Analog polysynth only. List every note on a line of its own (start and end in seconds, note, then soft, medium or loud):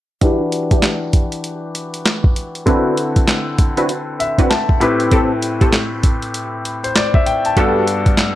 0.21 0.41 D4 loud
0.21 0.42 E4 medium
0.21 0.42 G4 loud
0.71 0.85 D4 medium
0.71 0.85 E4 medium
0.71 0.85 G4 medium
2.67 2.95 C4 loud
2.67 2.96 D4 medium
2.67 2.96 E4 medium
2.67 2.96 F#4 medium
2.67 2.96 B4 medium
3.77 3.91 C4 medium
3.77 3.91 D4 medium
3.77 3.91 E4 medium
3.77 3.91 F#4 medium
3.77 3.91 B4 medium
4.38 4.52 C4 medium
4.38 4.52 D4 medium
4.38 4.52 E4 medium
4.38 4.52 F#4 medium
4.38 4.52 B4 medium
5.12 5.32 C4 loud
5.12 5.32 G4 medium
5.12 5.32 A4 loud
5.61 5.75 C4 medium
5.61 5.75 G4 medium
5.61 5.75 A4 medium
7.57 7.85 B3 medium
7.57 7.85 F#4 medium
7.57 7.86 G4 medium
7.57 7.86 A4 loud